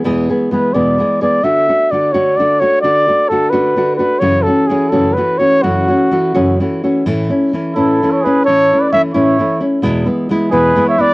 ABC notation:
X:1
M:6/8
L:1/16
Q:3/8=86
K:A
V:1 name="Trumpet"
z4 B2 d4 d2 | e4 d2 c2 d2 c2 | d4 A2 B4 B2 | c2 A2 G2 A2 B2 c2 |
F8 z4 | z6 A3 c B2 | c3 d e2 e4 z2 | z6 B3 e d z |]
V:2 name="Muted trumpet"
z12 | z12 | z12 | z12 |
z12 | z6 E3 A G2 | A3 B c2 c4 z2 | z6 G3 c B z |]
V:3 name="Nylon-string guitar"
[E,,B,,E,G,B,G]2 [E,G,B,G]2 [E,G,B,G]2 [E,,B,,E,G,B,G]2 [E,G,B,G]2 [E,G,B,G]2 | [D,A,DF]2 [A,DF]2 [D,A,DF]2 [D,A,DF]2 [D,A,DF]2 [A,DF]2 | [D,A,DF]2 [A,DF]2 [D,A,DF]2 [D,A,DF]2 [D,A,DF]2 [A,DF]2 | [F,,C,E,A,CF]2 [E,A,CF]2 [E,A,CF]2 [F,,C,E,A,CF]2 [E,A,CF]2 [E,A,CF]2 |
[F,,C,E,A,CF]2 [E,A,CF]2 [E,A,CF]2 [F,,C,E,A,CF]2 [E,A,CF]2 [E,A,CF]2 | [A,,E,A,CE]2 [A,CE]2 [E,A,CE]2 [A,,E,A,CE]2 [E,A,CE]2 [A,CE]2 | [A,,E,A,CE]2 [A,CE]2 [E,A,CE]2 [A,,E,A,CE]2 [E,A,CE]2 [A,CE]2 | [E,,B,,E,G,B,E]2 [E,G,B,E]2 [E,G,B,E]2 [E,,B,,E,G,B,E]2 [E,G,B,E]2 [E,G,B,E]2 |]